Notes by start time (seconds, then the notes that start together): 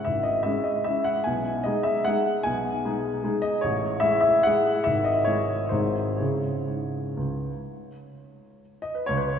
0.05 G#1 G#2 E5
0.23 D#5
0.43 G#3 C#4 E4 E5
0.64 D#5
0.84 G#3 C#4 E4 E5
1.04 F#5
1.24 B1 B2 G#5
1.63 G#3 D#4 G#4 D#5
1.83 E5
2.05 G#3 D#4 G#4 F#5
2.43 B1 B2 G#5
2.85 G#3 D#4 G#4
3.24 G#3 D#4 G#4
3.42 D#5
3.61 A1 A2 C#5
4.00 G#3 E4 G#4 E5
4.21 E5
4.43 G#3 E4 G#4 F#5
4.84 G#1 G#2 E5
5.04 D#5
5.24 G#3 E4 G#4 C#5
5.69 G#1 G#2 G#3 D#4 G#4 C5
6.17 C#3 E4 G#4 C#5
6.67 G#2
7.17 C#2
8.82 D#5
8.95 B4
9.06 C#2 C#5
9.17 B4
9.28 C#5